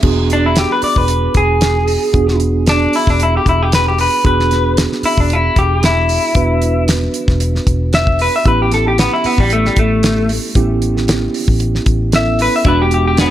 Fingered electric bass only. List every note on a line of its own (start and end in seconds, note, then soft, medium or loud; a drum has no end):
0.03 0.64 E1 medium
0.83 muted fingered electric bass stroke soft
0.96 1.26 E1 medium
1.35 1.96 E1 medium
2.14 2.86 E1 medium
3.07 3.37 E1 medium
3.46 4.07 E1 medium
4.25 4.86 E1 medium
5.03 muted fingered electric bass stroke soft
5.17 5.47 E1 medium
5.57 6.17 E1 medium
6.35 7.07 E1 medium
7.28 7.58 E1 medium
7.67 8.27 E1 medium
8.45 9.06 A1 medium
9.25 muted fingered electric bass stroke soft
9.38 9.68 A1 medium
9.77 10.37 A1 medium
10.55 11.27 A1 medium
11.48 11.78 A1 medium
11.86 12.47 A1 medium
12.65 13.26 E1 medium